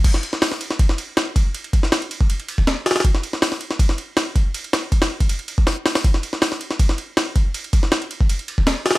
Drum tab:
CC |x-------------------------------|--------------------------------|--------------------------------|--------------------------------|
RD |x---x-------x---x---x---x---x---|x-x-x---x-x-x---x-x-x---x-------|x---x-------x---x---x---x---x---|x-x-x---x-x---x-x-x-x-----------|
HH |--------o-----------------------|----------------------------oooo|--------o-----------------------|------------------------o---o-o-|
SD |--o---o-o-o---o---o-----o-------|------o-o---------------o---oooo|--o---o-o-o---o---o-----o-------|----o-----o-------------o---o-o-|
BD |o---------------o-----------o---|----o---------o-------o---------|o---------------o-----------o---|--------o-----o-------o---------|

CC |--------------------------------|--------------------------------|
RD |x---x-------x---x---x---x---x---|x-x-x---x-x-x---x-x-x---x-------|
HH |--------o-----------------------|----------------------------oo--|
SD |--o---o-o-o---o---o-----o-------|------o-o---------------o---oo--|
BD |o---------------o-----------o---|----o---------o-------o---------|